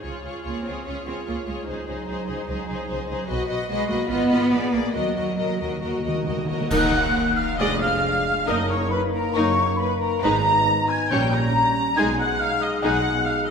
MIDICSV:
0, 0, Header, 1, 10, 480
1, 0, Start_track
1, 0, Tempo, 407886
1, 41, Time_signature, 4, 2, 24, 8
1, 5320, Tempo, 439239
1, 12040, Tempo, 429492
1, 15208, End_track
2, 0, Start_track
2, 0, Title_t, "Flute section"
2, 0, Program_c, 0, 73
2, 7706, Note_on_c, 0, 90, 95
2, 8393, Note_off_c, 0, 90, 0
2, 8426, Note_on_c, 0, 89, 76
2, 8492, Note_off_c, 0, 89, 0
2, 8670, Note_on_c, 0, 87, 74
2, 8735, Note_off_c, 0, 87, 0
2, 8917, Note_on_c, 0, 89, 95
2, 9622, Note_off_c, 0, 89, 0
2, 9642, Note_on_c, 0, 87, 82
2, 9707, Note_off_c, 0, 87, 0
2, 9882, Note_on_c, 0, 85, 71
2, 10108, Note_on_c, 0, 83, 71
2, 10116, Note_off_c, 0, 85, 0
2, 10174, Note_off_c, 0, 83, 0
2, 10353, Note_on_c, 0, 82, 80
2, 10581, Note_on_c, 0, 85, 92
2, 10591, Note_off_c, 0, 82, 0
2, 11059, Note_on_c, 0, 83, 75
2, 11068, Note_off_c, 0, 85, 0
2, 11311, Note_off_c, 0, 83, 0
2, 11314, Note_on_c, 0, 82, 78
2, 11545, Note_off_c, 0, 82, 0
2, 11558, Note_on_c, 0, 82, 97
2, 12268, Note_off_c, 0, 82, 0
2, 12289, Note_on_c, 0, 92, 77
2, 12531, Note_off_c, 0, 92, 0
2, 12531, Note_on_c, 0, 91, 86
2, 12771, Note_on_c, 0, 82, 96
2, 12773, Note_off_c, 0, 91, 0
2, 13485, Note_on_c, 0, 92, 89
2, 13492, Note_off_c, 0, 82, 0
2, 13552, Note_off_c, 0, 92, 0
2, 13744, Note_on_c, 0, 90, 77
2, 13971, Note_off_c, 0, 90, 0
2, 13972, Note_on_c, 0, 89, 86
2, 14209, Note_off_c, 0, 89, 0
2, 14212, Note_on_c, 0, 87, 77
2, 14443, Note_on_c, 0, 90, 77
2, 14448, Note_off_c, 0, 87, 0
2, 14912, Note_off_c, 0, 90, 0
2, 14929, Note_on_c, 0, 89, 74
2, 15165, Note_off_c, 0, 89, 0
2, 15174, Note_on_c, 0, 87, 84
2, 15208, Note_off_c, 0, 87, 0
2, 15208, End_track
3, 0, Start_track
3, 0, Title_t, "Violin section"
3, 0, Program_c, 1, 48
3, 32, Note_on_c, 1, 73, 36
3, 279, Note_off_c, 1, 73, 0
3, 296, Note_on_c, 1, 73, 36
3, 503, Note_off_c, 1, 73, 0
3, 517, Note_on_c, 1, 73, 40
3, 752, Note_off_c, 1, 73, 0
3, 766, Note_on_c, 1, 73, 32
3, 989, Note_off_c, 1, 73, 0
3, 1003, Note_on_c, 1, 73, 41
3, 1235, Note_off_c, 1, 73, 0
3, 1249, Note_on_c, 1, 73, 38
3, 1477, Note_off_c, 1, 73, 0
3, 1491, Note_on_c, 1, 73, 36
3, 1719, Note_off_c, 1, 73, 0
3, 1733, Note_on_c, 1, 73, 37
3, 1963, Note_on_c, 1, 72, 39
3, 1968, Note_off_c, 1, 73, 0
3, 2202, Note_off_c, 1, 72, 0
3, 2216, Note_on_c, 1, 72, 39
3, 2432, Note_off_c, 1, 72, 0
3, 2446, Note_on_c, 1, 72, 42
3, 2660, Note_off_c, 1, 72, 0
3, 2674, Note_on_c, 1, 72, 43
3, 2909, Note_off_c, 1, 72, 0
3, 2923, Note_on_c, 1, 72, 44
3, 3153, Note_off_c, 1, 72, 0
3, 3167, Note_on_c, 1, 72, 46
3, 3370, Note_off_c, 1, 72, 0
3, 3385, Note_on_c, 1, 72, 51
3, 3618, Note_off_c, 1, 72, 0
3, 3632, Note_on_c, 1, 72, 52
3, 3867, Note_off_c, 1, 72, 0
3, 3871, Note_on_c, 1, 75, 58
3, 4091, Note_off_c, 1, 75, 0
3, 4105, Note_on_c, 1, 75, 59
3, 4338, Note_off_c, 1, 75, 0
3, 4359, Note_on_c, 1, 75, 67
3, 4568, Note_off_c, 1, 75, 0
3, 4582, Note_on_c, 1, 75, 50
3, 4790, Note_off_c, 1, 75, 0
3, 4804, Note_on_c, 1, 75, 63
3, 5046, Note_off_c, 1, 75, 0
3, 5060, Note_on_c, 1, 75, 57
3, 5309, Note_on_c, 1, 74, 57
3, 5310, Note_off_c, 1, 75, 0
3, 5528, Note_off_c, 1, 74, 0
3, 5541, Note_on_c, 1, 74, 51
3, 5774, Note_on_c, 1, 75, 52
3, 5780, Note_off_c, 1, 74, 0
3, 6009, Note_off_c, 1, 75, 0
3, 6023, Note_on_c, 1, 75, 42
3, 6246, Note_off_c, 1, 75, 0
3, 6259, Note_on_c, 1, 75, 50
3, 6487, Note_off_c, 1, 75, 0
3, 6500, Note_on_c, 1, 75, 38
3, 6728, Note_off_c, 1, 75, 0
3, 6742, Note_on_c, 1, 75, 40
3, 6979, Note_off_c, 1, 75, 0
3, 6993, Note_on_c, 1, 75, 39
3, 7217, Note_off_c, 1, 75, 0
3, 7230, Note_on_c, 1, 75, 42
3, 7461, Note_off_c, 1, 75, 0
3, 7474, Note_on_c, 1, 75, 42
3, 7697, Note_off_c, 1, 75, 0
3, 7710, Note_on_c, 1, 75, 67
3, 7938, Note_off_c, 1, 75, 0
3, 8681, Note_on_c, 1, 74, 62
3, 8905, Note_off_c, 1, 74, 0
3, 9634, Note_on_c, 1, 70, 58
3, 9859, Note_off_c, 1, 70, 0
3, 10588, Note_on_c, 1, 70, 65
3, 10815, Note_off_c, 1, 70, 0
3, 11563, Note_on_c, 1, 71, 60
3, 11787, Note_off_c, 1, 71, 0
3, 12524, Note_on_c, 1, 73, 61
3, 12752, Note_off_c, 1, 73, 0
3, 13506, Note_on_c, 1, 68, 65
3, 13721, Note_off_c, 1, 68, 0
3, 14453, Note_on_c, 1, 68, 62
3, 14671, Note_off_c, 1, 68, 0
3, 15208, End_track
4, 0, Start_track
4, 0, Title_t, "Violin section"
4, 0, Program_c, 2, 48
4, 45, Note_on_c, 2, 68, 35
4, 274, Note_off_c, 2, 68, 0
4, 288, Note_on_c, 2, 68, 29
4, 515, Note_off_c, 2, 68, 0
4, 529, Note_on_c, 2, 68, 38
4, 770, Note_off_c, 2, 68, 0
4, 784, Note_on_c, 2, 68, 36
4, 1011, Note_off_c, 2, 68, 0
4, 1025, Note_on_c, 2, 68, 37
4, 1257, Note_off_c, 2, 68, 0
4, 1269, Note_on_c, 2, 68, 35
4, 1491, Note_off_c, 2, 68, 0
4, 1505, Note_on_c, 2, 68, 35
4, 1725, Note_off_c, 2, 68, 0
4, 1739, Note_on_c, 2, 68, 36
4, 1946, Note_off_c, 2, 68, 0
4, 1960, Note_on_c, 2, 68, 38
4, 2185, Note_off_c, 2, 68, 0
4, 2199, Note_on_c, 2, 68, 35
4, 2431, Note_off_c, 2, 68, 0
4, 2445, Note_on_c, 2, 68, 48
4, 2667, Note_off_c, 2, 68, 0
4, 2681, Note_on_c, 2, 68, 41
4, 2900, Note_off_c, 2, 68, 0
4, 2914, Note_on_c, 2, 68, 48
4, 3144, Note_off_c, 2, 68, 0
4, 3159, Note_on_c, 2, 68, 43
4, 3396, Note_off_c, 2, 68, 0
4, 3411, Note_on_c, 2, 68, 46
4, 3619, Note_off_c, 2, 68, 0
4, 3633, Note_on_c, 2, 68, 45
4, 3866, Note_on_c, 2, 71, 50
4, 3867, Note_off_c, 2, 68, 0
4, 4081, Note_off_c, 2, 71, 0
4, 4095, Note_on_c, 2, 71, 51
4, 4325, Note_off_c, 2, 71, 0
4, 4339, Note_on_c, 2, 71, 63
4, 4572, Note_off_c, 2, 71, 0
4, 4587, Note_on_c, 2, 71, 59
4, 4802, Note_off_c, 2, 71, 0
4, 4816, Note_on_c, 2, 71, 61
4, 5048, Note_off_c, 2, 71, 0
4, 5062, Note_on_c, 2, 71, 55
4, 5291, Note_off_c, 2, 71, 0
4, 5305, Note_on_c, 2, 71, 54
4, 5538, Note_off_c, 2, 71, 0
4, 5551, Note_on_c, 2, 71, 47
4, 5781, Note_on_c, 2, 70, 50
4, 5785, Note_off_c, 2, 71, 0
4, 6015, Note_off_c, 2, 70, 0
4, 6028, Note_on_c, 2, 70, 39
4, 6245, Note_off_c, 2, 70, 0
4, 6258, Note_on_c, 2, 70, 51
4, 6492, Note_off_c, 2, 70, 0
4, 6505, Note_on_c, 2, 70, 41
4, 6724, Note_off_c, 2, 70, 0
4, 6737, Note_on_c, 2, 70, 45
4, 6959, Note_off_c, 2, 70, 0
4, 6972, Note_on_c, 2, 70, 40
4, 7205, Note_off_c, 2, 70, 0
4, 7218, Note_on_c, 2, 70, 36
4, 7445, Note_off_c, 2, 70, 0
4, 7458, Note_on_c, 2, 70, 46
4, 7695, Note_on_c, 2, 78, 71
4, 7700, Note_off_c, 2, 70, 0
4, 8388, Note_off_c, 2, 78, 0
4, 8434, Note_on_c, 2, 77, 69
4, 8672, Note_off_c, 2, 77, 0
4, 8672, Note_on_c, 2, 75, 86
4, 8912, Note_off_c, 2, 75, 0
4, 8921, Note_on_c, 2, 77, 77
4, 9625, Note_off_c, 2, 77, 0
4, 9636, Note_on_c, 2, 75, 67
4, 9877, Note_off_c, 2, 75, 0
4, 9878, Note_on_c, 2, 73, 63
4, 10119, Note_off_c, 2, 73, 0
4, 10119, Note_on_c, 2, 71, 77
4, 10206, Note_off_c, 2, 71, 0
4, 10364, Note_on_c, 2, 70, 70
4, 10596, Note_off_c, 2, 70, 0
4, 10606, Note_on_c, 2, 73, 76
4, 11078, Note_on_c, 2, 71, 65
4, 11081, Note_off_c, 2, 73, 0
4, 11316, Note_off_c, 2, 71, 0
4, 11320, Note_on_c, 2, 70, 69
4, 11553, Note_on_c, 2, 82, 83
4, 11560, Note_off_c, 2, 70, 0
4, 12270, Note_on_c, 2, 80, 65
4, 12281, Note_off_c, 2, 82, 0
4, 12517, Note_off_c, 2, 80, 0
4, 12518, Note_on_c, 2, 79, 76
4, 12765, Note_on_c, 2, 82, 75
4, 12766, Note_off_c, 2, 79, 0
4, 13489, Note_off_c, 2, 82, 0
4, 13497, Note_on_c, 2, 80, 71
4, 13733, Note_off_c, 2, 80, 0
4, 13734, Note_on_c, 2, 78, 70
4, 13966, Note_off_c, 2, 78, 0
4, 13981, Note_on_c, 2, 77, 88
4, 14214, Note_off_c, 2, 77, 0
4, 14216, Note_on_c, 2, 75, 73
4, 14451, Note_off_c, 2, 75, 0
4, 14455, Note_on_c, 2, 78, 80
4, 14918, Note_off_c, 2, 78, 0
4, 14925, Note_on_c, 2, 77, 69
4, 15163, Note_off_c, 2, 77, 0
4, 15171, Note_on_c, 2, 75, 68
4, 15208, Note_off_c, 2, 75, 0
4, 15208, End_track
5, 0, Start_track
5, 0, Title_t, "Viola section"
5, 0, Program_c, 3, 48
5, 53, Note_on_c, 3, 65, 40
5, 276, Note_off_c, 3, 65, 0
5, 290, Note_on_c, 3, 65, 33
5, 518, Note_off_c, 3, 65, 0
5, 532, Note_on_c, 3, 65, 33
5, 753, Note_off_c, 3, 65, 0
5, 767, Note_on_c, 3, 65, 33
5, 1001, Note_off_c, 3, 65, 0
5, 1015, Note_on_c, 3, 65, 36
5, 1244, Note_off_c, 3, 65, 0
5, 1258, Note_on_c, 3, 65, 37
5, 1482, Note_off_c, 3, 65, 0
5, 1496, Note_on_c, 3, 65, 35
5, 1720, Note_off_c, 3, 65, 0
5, 1734, Note_on_c, 3, 65, 35
5, 1965, Note_on_c, 3, 63, 44
5, 1968, Note_off_c, 3, 65, 0
5, 2182, Note_off_c, 3, 63, 0
5, 2196, Note_on_c, 3, 63, 44
5, 2439, Note_off_c, 3, 63, 0
5, 2452, Note_on_c, 3, 63, 39
5, 2673, Note_off_c, 3, 63, 0
5, 2687, Note_on_c, 3, 63, 41
5, 2900, Note_off_c, 3, 63, 0
5, 2915, Note_on_c, 3, 63, 48
5, 3144, Note_off_c, 3, 63, 0
5, 3158, Note_on_c, 3, 63, 53
5, 3375, Note_off_c, 3, 63, 0
5, 3389, Note_on_c, 3, 63, 44
5, 3609, Note_off_c, 3, 63, 0
5, 3623, Note_on_c, 3, 63, 49
5, 3862, Note_off_c, 3, 63, 0
5, 3862, Note_on_c, 3, 66, 63
5, 4086, Note_off_c, 3, 66, 0
5, 4100, Note_on_c, 3, 66, 53
5, 4314, Note_off_c, 3, 66, 0
5, 4328, Note_on_c, 3, 66, 56
5, 4554, Note_off_c, 3, 66, 0
5, 4569, Note_on_c, 3, 66, 59
5, 4813, Note_off_c, 3, 66, 0
5, 4815, Note_on_c, 3, 65, 58
5, 5048, Note_off_c, 3, 65, 0
5, 5062, Note_on_c, 3, 65, 55
5, 5311, Note_off_c, 3, 65, 0
5, 5324, Note_on_c, 3, 68, 49
5, 5550, Note_off_c, 3, 68, 0
5, 5563, Note_on_c, 3, 68, 47
5, 5791, Note_off_c, 3, 68, 0
5, 5797, Note_on_c, 3, 66, 50
5, 6016, Note_off_c, 3, 66, 0
5, 6030, Note_on_c, 3, 66, 43
5, 6256, Note_off_c, 3, 66, 0
5, 6269, Note_on_c, 3, 66, 38
5, 6497, Note_off_c, 3, 66, 0
5, 6510, Note_on_c, 3, 66, 47
5, 6740, Note_off_c, 3, 66, 0
5, 6753, Note_on_c, 3, 66, 44
5, 6972, Note_off_c, 3, 66, 0
5, 6985, Note_on_c, 3, 66, 38
5, 7212, Note_off_c, 3, 66, 0
5, 7225, Note_on_c, 3, 66, 37
5, 7454, Note_off_c, 3, 66, 0
5, 7467, Note_on_c, 3, 66, 38
5, 7705, Note_off_c, 3, 66, 0
5, 7708, Note_on_c, 3, 70, 65
5, 7709, Note_on_c, 3, 63, 63
5, 7937, Note_off_c, 3, 63, 0
5, 7937, Note_off_c, 3, 70, 0
5, 8679, Note_on_c, 3, 56, 61
5, 8682, Note_on_c, 3, 68, 59
5, 8904, Note_off_c, 3, 56, 0
5, 8905, Note_off_c, 3, 68, 0
5, 9641, Note_on_c, 3, 63, 60
5, 9645, Note_on_c, 3, 58, 60
5, 9863, Note_off_c, 3, 63, 0
5, 9865, Note_off_c, 3, 58, 0
5, 10600, Note_on_c, 3, 58, 53
5, 10601, Note_on_c, 3, 63, 59
5, 10822, Note_off_c, 3, 58, 0
5, 10822, Note_off_c, 3, 63, 0
5, 11566, Note_on_c, 3, 63, 63
5, 11567, Note_on_c, 3, 56, 60
5, 11788, Note_off_c, 3, 63, 0
5, 11789, Note_off_c, 3, 56, 0
5, 12530, Note_on_c, 3, 55, 57
5, 12534, Note_on_c, 3, 61, 60
5, 12756, Note_off_c, 3, 55, 0
5, 12757, Note_off_c, 3, 61, 0
5, 13487, Note_on_c, 3, 56, 69
5, 13490, Note_on_c, 3, 63, 62
5, 13711, Note_off_c, 3, 56, 0
5, 13713, Note_off_c, 3, 63, 0
5, 14448, Note_on_c, 3, 63, 60
5, 14453, Note_on_c, 3, 56, 60
5, 14669, Note_off_c, 3, 63, 0
5, 14671, Note_off_c, 3, 56, 0
5, 15208, End_track
6, 0, Start_track
6, 0, Title_t, "French horn section"
6, 0, Program_c, 4, 60
6, 7716, Note_on_c, 4, 63, 67
6, 7717, Note_on_c, 4, 58, 61
6, 8639, Note_off_c, 4, 58, 0
6, 8639, Note_off_c, 4, 63, 0
6, 8685, Note_on_c, 4, 56, 66
6, 8687, Note_on_c, 4, 62, 65
6, 9634, Note_on_c, 4, 58, 62
6, 9640, Note_on_c, 4, 63, 68
6, 9641, Note_off_c, 4, 56, 0
6, 9643, Note_off_c, 4, 62, 0
6, 11527, Note_off_c, 4, 63, 0
6, 11555, Note_on_c, 4, 59, 61
6, 11557, Note_on_c, 4, 63, 59
6, 11562, Note_off_c, 4, 58, 0
6, 12505, Note_off_c, 4, 59, 0
6, 12507, Note_off_c, 4, 63, 0
6, 12531, Note_on_c, 4, 55, 57
6, 12535, Note_on_c, 4, 61, 58
6, 13474, Note_off_c, 4, 55, 0
6, 13495, Note_off_c, 4, 61, 0
6, 13499, Note_on_c, 4, 56, 66
6, 13501, Note_on_c, 4, 63, 70
6, 15208, Note_off_c, 4, 56, 0
6, 15208, Note_off_c, 4, 63, 0
6, 15208, End_track
7, 0, Start_track
7, 0, Title_t, "Cello section"
7, 0, Program_c, 5, 48
7, 535, Note_on_c, 5, 58, 53
7, 760, Note_off_c, 5, 58, 0
7, 785, Note_on_c, 5, 60, 45
7, 1020, Note_on_c, 5, 61, 62
7, 1023, Note_off_c, 5, 60, 0
7, 1114, Note_off_c, 5, 61, 0
7, 1262, Note_on_c, 5, 60, 53
7, 1356, Note_off_c, 5, 60, 0
7, 1496, Note_on_c, 5, 58, 58
7, 1590, Note_off_c, 5, 58, 0
7, 1736, Note_on_c, 5, 56, 55
7, 1830, Note_off_c, 5, 56, 0
7, 1972, Note_on_c, 5, 54, 54
7, 3837, Note_off_c, 5, 54, 0
7, 4344, Note_on_c, 5, 56, 84
7, 4567, Note_off_c, 5, 56, 0
7, 4582, Note_on_c, 5, 58, 75
7, 4817, Note_on_c, 5, 59, 94
7, 4825, Note_off_c, 5, 58, 0
7, 5537, Note_off_c, 5, 59, 0
7, 5551, Note_on_c, 5, 58, 78
7, 5789, Note_off_c, 5, 58, 0
7, 5792, Note_on_c, 5, 54, 64
7, 7225, Note_off_c, 5, 54, 0
7, 7714, Note_on_c, 5, 39, 69
7, 8119, Note_off_c, 5, 39, 0
7, 8684, Note_on_c, 5, 41, 71
7, 9084, Note_off_c, 5, 41, 0
7, 9637, Note_on_c, 5, 42, 65
7, 10038, Note_off_c, 5, 42, 0
7, 10598, Note_on_c, 5, 42, 70
7, 10997, Note_off_c, 5, 42, 0
7, 11560, Note_on_c, 5, 44, 68
7, 11961, Note_off_c, 5, 44, 0
7, 12528, Note_on_c, 5, 46, 65
7, 12932, Note_off_c, 5, 46, 0
7, 13492, Note_on_c, 5, 47, 61
7, 13889, Note_off_c, 5, 47, 0
7, 14450, Note_on_c, 5, 47, 64
7, 14845, Note_off_c, 5, 47, 0
7, 15208, End_track
8, 0, Start_track
8, 0, Title_t, "Timpani"
8, 0, Program_c, 6, 47
8, 5786, Note_on_c, 6, 51, 27
8, 5857, Note_off_c, 6, 51, 0
8, 5870, Note_on_c, 6, 51, 28
8, 5940, Note_off_c, 6, 51, 0
8, 5953, Note_on_c, 6, 51, 30
8, 6026, Note_off_c, 6, 51, 0
8, 6040, Note_on_c, 6, 51, 27
8, 6100, Note_off_c, 6, 51, 0
8, 6113, Note_on_c, 6, 51, 31
8, 6180, Note_off_c, 6, 51, 0
8, 6193, Note_on_c, 6, 51, 36
8, 6265, Note_off_c, 6, 51, 0
8, 6278, Note_on_c, 6, 51, 38
8, 6345, Note_off_c, 6, 51, 0
8, 6358, Note_on_c, 6, 51, 34
8, 6430, Note_off_c, 6, 51, 0
8, 6444, Note_on_c, 6, 51, 37
8, 6509, Note_off_c, 6, 51, 0
8, 6523, Note_on_c, 6, 51, 43
8, 6594, Note_off_c, 6, 51, 0
8, 6607, Note_on_c, 6, 51, 41
8, 6680, Note_off_c, 6, 51, 0
8, 6693, Note_on_c, 6, 51, 43
8, 6758, Note_off_c, 6, 51, 0
8, 6772, Note_on_c, 6, 51, 48
8, 6843, Note_off_c, 6, 51, 0
8, 6856, Note_on_c, 6, 51, 50
8, 6926, Note_off_c, 6, 51, 0
8, 6939, Note_on_c, 6, 51, 47
8, 7015, Note_off_c, 6, 51, 0
8, 7030, Note_on_c, 6, 51, 61
8, 7091, Note_off_c, 6, 51, 0
8, 7104, Note_on_c, 6, 51, 61
8, 7176, Note_off_c, 6, 51, 0
8, 7189, Note_on_c, 6, 51, 67
8, 7256, Note_off_c, 6, 51, 0
8, 7270, Note_on_c, 6, 51, 60
8, 7327, Note_off_c, 6, 51, 0
8, 7340, Note_on_c, 6, 51, 67
8, 7410, Note_off_c, 6, 51, 0
8, 7423, Note_on_c, 6, 51, 72
8, 7496, Note_off_c, 6, 51, 0
8, 7509, Note_on_c, 6, 51, 65
8, 7582, Note_off_c, 6, 51, 0
8, 7596, Note_on_c, 6, 51, 70
8, 7673, Note_off_c, 6, 51, 0
8, 12533, Note_on_c, 6, 46, 61
8, 13210, Note_off_c, 6, 46, 0
8, 15208, End_track
9, 0, Start_track
9, 0, Title_t, "Double bass section"
9, 0, Program_c, 7, 48
9, 48, Note_on_c, 7, 37, 48
9, 143, Note_off_c, 7, 37, 0
9, 292, Note_on_c, 7, 37, 34
9, 386, Note_off_c, 7, 37, 0
9, 537, Note_on_c, 7, 37, 35
9, 631, Note_off_c, 7, 37, 0
9, 778, Note_on_c, 7, 37, 42
9, 872, Note_off_c, 7, 37, 0
9, 1019, Note_on_c, 7, 37, 42
9, 1113, Note_off_c, 7, 37, 0
9, 1255, Note_on_c, 7, 37, 36
9, 1349, Note_off_c, 7, 37, 0
9, 1504, Note_on_c, 7, 37, 43
9, 1598, Note_off_c, 7, 37, 0
9, 1745, Note_on_c, 7, 37, 36
9, 1839, Note_off_c, 7, 37, 0
9, 1982, Note_on_c, 7, 37, 51
9, 2076, Note_off_c, 7, 37, 0
9, 2218, Note_on_c, 7, 37, 41
9, 2312, Note_off_c, 7, 37, 0
9, 2451, Note_on_c, 7, 37, 39
9, 2545, Note_off_c, 7, 37, 0
9, 2687, Note_on_c, 7, 37, 50
9, 2781, Note_off_c, 7, 37, 0
9, 2925, Note_on_c, 7, 37, 55
9, 3019, Note_off_c, 7, 37, 0
9, 3178, Note_on_c, 7, 37, 49
9, 3271, Note_off_c, 7, 37, 0
9, 3413, Note_on_c, 7, 37, 60
9, 3506, Note_off_c, 7, 37, 0
9, 3654, Note_on_c, 7, 37, 58
9, 3746, Note_off_c, 7, 37, 0
9, 3884, Note_on_c, 7, 35, 77
9, 3976, Note_off_c, 7, 35, 0
9, 4116, Note_on_c, 7, 35, 54
9, 4209, Note_off_c, 7, 35, 0
9, 4346, Note_on_c, 7, 35, 60
9, 4440, Note_off_c, 7, 35, 0
9, 4586, Note_on_c, 7, 35, 67
9, 4680, Note_off_c, 7, 35, 0
9, 4826, Note_on_c, 7, 32, 68
9, 4921, Note_off_c, 7, 32, 0
9, 5065, Note_on_c, 7, 32, 61
9, 5159, Note_off_c, 7, 32, 0
9, 5322, Note_on_c, 7, 34, 57
9, 5410, Note_off_c, 7, 34, 0
9, 5550, Note_on_c, 7, 34, 44
9, 5637, Note_off_c, 7, 34, 0
9, 5779, Note_on_c, 7, 39, 64
9, 5866, Note_off_c, 7, 39, 0
9, 6027, Note_on_c, 7, 39, 43
9, 6114, Note_off_c, 7, 39, 0
9, 6268, Note_on_c, 7, 39, 47
9, 6355, Note_off_c, 7, 39, 0
9, 6511, Note_on_c, 7, 39, 43
9, 6599, Note_off_c, 7, 39, 0
9, 6753, Note_on_c, 7, 39, 47
9, 6840, Note_off_c, 7, 39, 0
9, 6996, Note_on_c, 7, 39, 46
9, 7083, Note_off_c, 7, 39, 0
9, 7230, Note_on_c, 7, 39, 45
9, 7317, Note_off_c, 7, 39, 0
9, 7473, Note_on_c, 7, 39, 36
9, 7560, Note_off_c, 7, 39, 0
9, 7710, Note_on_c, 7, 39, 83
9, 8117, Note_off_c, 7, 39, 0
9, 8678, Note_on_c, 7, 29, 70
9, 9081, Note_off_c, 7, 29, 0
9, 9636, Note_on_c, 7, 30, 73
9, 10037, Note_off_c, 7, 30, 0
9, 10596, Note_on_c, 7, 30, 61
9, 10996, Note_off_c, 7, 30, 0
9, 11557, Note_on_c, 7, 32, 78
9, 11959, Note_off_c, 7, 32, 0
9, 12534, Note_on_c, 7, 34, 66
9, 12935, Note_off_c, 7, 34, 0
9, 13496, Note_on_c, 7, 35, 68
9, 13891, Note_off_c, 7, 35, 0
9, 14451, Note_on_c, 7, 35, 67
9, 14846, Note_off_c, 7, 35, 0
9, 15208, End_track
10, 0, Start_track
10, 0, Title_t, "Drums"
10, 7709, Note_on_c, 9, 35, 80
10, 7709, Note_on_c, 9, 49, 63
10, 7818, Note_off_c, 9, 35, 0
10, 7818, Note_off_c, 9, 49, 0
10, 15208, End_track
0, 0, End_of_file